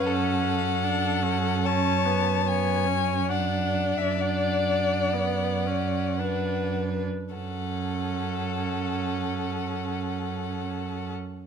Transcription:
0, 0, Header, 1, 5, 480
1, 0, Start_track
1, 0, Key_signature, 3, "minor"
1, 0, Tempo, 804290
1, 25, Time_signature, 4, 2, 24, 8
1, 1465, Tempo, 864553
1, 2425, Tempo, 958466
1, 2905, Tempo, 1056338
1, 3385, Tempo, 1134216
1, 3865, Tempo, 1045296
1, 5763, End_track
2, 0, Start_track
2, 0, Title_t, "Violin"
2, 0, Program_c, 0, 40
2, 30, Note_on_c, 0, 78, 65
2, 988, Note_on_c, 0, 81, 57
2, 997, Note_off_c, 0, 78, 0
2, 1474, Note_on_c, 0, 80, 58
2, 1483, Note_off_c, 0, 81, 0
2, 1937, Note_off_c, 0, 80, 0
2, 1939, Note_on_c, 0, 78, 47
2, 2312, Note_on_c, 0, 76, 40
2, 2320, Note_off_c, 0, 78, 0
2, 2441, Note_on_c, 0, 78, 44
2, 2449, Note_off_c, 0, 76, 0
2, 3636, Note_off_c, 0, 78, 0
2, 3874, Note_on_c, 0, 78, 32
2, 5607, Note_off_c, 0, 78, 0
2, 5763, End_track
3, 0, Start_track
3, 0, Title_t, "Violin"
3, 0, Program_c, 1, 40
3, 37, Note_on_c, 1, 69, 42
3, 269, Note_off_c, 1, 69, 0
3, 275, Note_on_c, 1, 69, 43
3, 983, Note_on_c, 1, 73, 41
3, 992, Note_off_c, 1, 69, 0
3, 1467, Note_off_c, 1, 73, 0
3, 1470, Note_on_c, 1, 73, 39
3, 1934, Note_on_c, 1, 74, 36
3, 1942, Note_off_c, 1, 73, 0
3, 3386, Note_off_c, 1, 74, 0
3, 3390, Note_on_c, 1, 71, 28
3, 3745, Note_off_c, 1, 71, 0
3, 3870, Note_on_c, 1, 69, 30
3, 5603, Note_off_c, 1, 69, 0
3, 5763, End_track
4, 0, Start_track
4, 0, Title_t, "Viola"
4, 0, Program_c, 2, 41
4, 0, Note_on_c, 2, 61, 47
4, 500, Note_on_c, 2, 62, 44
4, 509, Note_off_c, 2, 61, 0
4, 730, Note_on_c, 2, 61, 40
4, 739, Note_off_c, 2, 62, 0
4, 968, Note_off_c, 2, 61, 0
4, 972, Note_on_c, 2, 61, 46
4, 1224, Note_on_c, 2, 59, 42
4, 1233, Note_off_c, 2, 61, 0
4, 1460, Note_off_c, 2, 59, 0
4, 1463, Note_on_c, 2, 59, 41
4, 1694, Note_on_c, 2, 61, 37
4, 1702, Note_off_c, 2, 59, 0
4, 1928, Note_on_c, 2, 62, 36
4, 1936, Note_off_c, 2, 61, 0
4, 2424, Note_off_c, 2, 62, 0
4, 2430, Note_on_c, 2, 62, 34
4, 2906, Note_on_c, 2, 59, 35
4, 2913, Note_off_c, 2, 62, 0
4, 3142, Note_on_c, 2, 61, 30
4, 3149, Note_off_c, 2, 59, 0
4, 3384, Note_on_c, 2, 62, 27
4, 3390, Note_off_c, 2, 61, 0
4, 3750, Note_off_c, 2, 62, 0
4, 3868, Note_on_c, 2, 61, 30
4, 5601, Note_off_c, 2, 61, 0
4, 5763, End_track
5, 0, Start_track
5, 0, Title_t, "Cello"
5, 0, Program_c, 3, 42
5, 27, Note_on_c, 3, 42, 48
5, 3735, Note_off_c, 3, 42, 0
5, 3865, Note_on_c, 3, 42, 31
5, 5598, Note_off_c, 3, 42, 0
5, 5763, End_track
0, 0, End_of_file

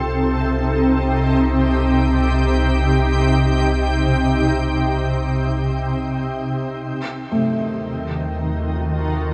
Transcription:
0, 0, Header, 1, 4, 480
1, 0, Start_track
1, 0, Tempo, 500000
1, 8964, End_track
2, 0, Start_track
2, 0, Title_t, "Ambient pad"
2, 0, Program_c, 0, 92
2, 0, Note_on_c, 0, 48, 93
2, 0, Note_on_c, 0, 60, 96
2, 0, Note_on_c, 0, 63, 67
2, 0, Note_on_c, 0, 65, 82
2, 0, Note_on_c, 0, 69, 66
2, 0, Note_on_c, 0, 79, 75
2, 188, Note_on_c, 0, 67, 88
2, 232, Note_off_c, 0, 69, 0
2, 1557, Note_off_c, 0, 65, 0
2, 6520, Note_off_c, 0, 48, 0
2, 6523, Note_off_c, 0, 67, 0
2, 6523, Note_off_c, 0, 79, 0
2, 6526, Note_on_c, 0, 51, 85
2, 7394, Note_on_c, 0, 66, 84
2, 7473, Note_on_c, 0, 65, 80
2, 7897, Note_off_c, 0, 63, 0
2, 8259, Note_off_c, 0, 60, 0
2, 8538, Note_on_c, 0, 75, 64
2, 8964, Note_off_c, 0, 51, 0
2, 8964, Note_off_c, 0, 65, 0
2, 8964, Note_off_c, 0, 66, 0
2, 8964, Note_off_c, 0, 75, 0
2, 8964, End_track
3, 0, Start_track
3, 0, Title_t, "Felt piano"
3, 0, Program_c, 1, 0
3, 6713, Control_c, 1, 64, 127
3, 7024, Note_on_c, 1, 57, 49
3, 8964, Note_off_c, 1, 57, 0
3, 8964, End_track
4, 0, Start_track
4, 0, Title_t, "Synth drone"
4, 0, Program_c, 2, 95
4, 0, Note_on_c, 2, 36, 84
4, 6473, Note_off_c, 2, 36, 0
4, 6519, Note_on_c, 2, 39, 86
4, 8964, Note_off_c, 2, 39, 0
4, 8964, End_track
0, 0, End_of_file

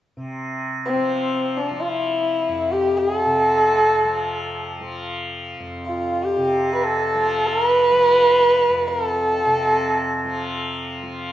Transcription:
0, 0, Header, 1, 3, 480
1, 0, Start_track
1, 0, Tempo, 500000
1, 10870, End_track
2, 0, Start_track
2, 0, Title_t, "Sarangi"
2, 0, Program_c, 0, 110
2, 820, Note_on_c, 0, 60, 68
2, 1504, Note_on_c, 0, 62, 59
2, 1518, Note_off_c, 0, 60, 0
2, 1731, Note_on_c, 0, 65, 50
2, 1745, Note_off_c, 0, 62, 0
2, 1811, Note_on_c, 0, 64, 70
2, 1825, Note_off_c, 0, 65, 0
2, 2600, Note_on_c, 0, 67, 77
2, 2615, Note_off_c, 0, 64, 0
2, 2852, Note_on_c, 0, 68, 84
2, 2867, Note_off_c, 0, 67, 0
2, 3035, Note_off_c, 0, 68, 0
2, 3035, Note_on_c, 0, 69, 84
2, 4452, Note_off_c, 0, 69, 0
2, 5631, Note_on_c, 0, 65, 66
2, 5987, Note_on_c, 0, 67, 78
2, 6002, Note_off_c, 0, 65, 0
2, 6472, Note_off_c, 0, 67, 0
2, 6478, Note_on_c, 0, 71, 60
2, 6563, Note_on_c, 0, 69, 80
2, 6578, Note_off_c, 0, 71, 0
2, 7172, Note_on_c, 0, 70, 95
2, 7187, Note_off_c, 0, 69, 0
2, 7355, Note_off_c, 0, 70, 0
2, 7355, Note_on_c, 0, 71, 95
2, 8519, Note_on_c, 0, 70, 79
2, 8534, Note_off_c, 0, 71, 0
2, 8702, Note_off_c, 0, 70, 0
2, 8702, Note_on_c, 0, 69, 79
2, 10164, Note_off_c, 0, 69, 0
2, 10870, End_track
3, 0, Start_track
3, 0, Title_t, "Tanpura"
3, 0, Program_c, 1, 104
3, 161, Note_on_c, 1, 48, 46
3, 916, Note_on_c, 1, 53, 48
3, 1643, Note_off_c, 1, 53, 0
3, 1643, Note_on_c, 1, 53, 44
3, 2385, Note_on_c, 1, 41, 45
3, 3122, Note_off_c, 1, 48, 0
3, 3126, Note_on_c, 1, 48, 48
3, 3883, Note_off_c, 1, 53, 0
3, 3883, Note_on_c, 1, 53, 48
3, 4612, Note_off_c, 1, 53, 0
3, 4612, Note_on_c, 1, 53, 47
3, 5367, Note_off_c, 1, 41, 0
3, 5371, Note_on_c, 1, 41, 48
3, 6112, Note_off_c, 1, 48, 0
3, 6116, Note_on_c, 1, 48, 51
3, 6863, Note_off_c, 1, 53, 0
3, 6863, Note_on_c, 1, 53, 50
3, 7600, Note_off_c, 1, 53, 0
3, 7600, Note_on_c, 1, 53, 48
3, 8333, Note_off_c, 1, 41, 0
3, 8337, Note_on_c, 1, 41, 47
3, 9077, Note_off_c, 1, 48, 0
3, 9081, Note_on_c, 1, 48, 50
3, 9835, Note_off_c, 1, 53, 0
3, 9835, Note_on_c, 1, 53, 50
3, 10586, Note_off_c, 1, 53, 0
3, 10586, Note_on_c, 1, 53, 45
3, 10870, Note_off_c, 1, 41, 0
3, 10870, Note_off_c, 1, 48, 0
3, 10870, Note_off_c, 1, 53, 0
3, 10870, End_track
0, 0, End_of_file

